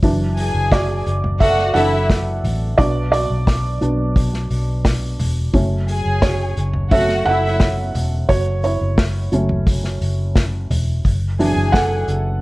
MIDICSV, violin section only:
0, 0, Header, 1, 2, 480
1, 0, Start_track
1, 0, Key_signature, 3, "minor"
1, 0, Tempo, 688863
1, 20, Time_signature, 4, 2, 24, 8
1, 8651, End_track
2, 0, Start_track
2, 0, Title_t, "Violin section"
2, 0, Program_c, 0, 48
2, 259, Note_on_c, 0, 80, 94
2, 261, Note_on_c, 0, 68, 82
2, 712, Note_off_c, 0, 80, 0
2, 713, Note_off_c, 0, 68, 0
2, 978, Note_on_c, 0, 66, 96
2, 978, Note_on_c, 0, 78, 106
2, 1171, Note_off_c, 0, 66, 0
2, 1171, Note_off_c, 0, 78, 0
2, 1217, Note_on_c, 0, 64, 101
2, 1217, Note_on_c, 0, 76, 109
2, 1410, Note_off_c, 0, 64, 0
2, 1411, Note_off_c, 0, 76, 0
2, 4098, Note_on_c, 0, 68, 82
2, 4099, Note_on_c, 0, 80, 90
2, 4551, Note_off_c, 0, 68, 0
2, 4552, Note_off_c, 0, 80, 0
2, 4815, Note_on_c, 0, 78, 95
2, 4817, Note_on_c, 0, 66, 91
2, 5009, Note_off_c, 0, 78, 0
2, 5010, Note_off_c, 0, 66, 0
2, 5061, Note_on_c, 0, 64, 96
2, 5061, Note_on_c, 0, 76, 116
2, 5252, Note_off_c, 0, 64, 0
2, 5253, Note_off_c, 0, 76, 0
2, 7939, Note_on_c, 0, 68, 82
2, 7941, Note_on_c, 0, 80, 89
2, 8390, Note_off_c, 0, 68, 0
2, 8391, Note_off_c, 0, 80, 0
2, 8651, End_track
0, 0, End_of_file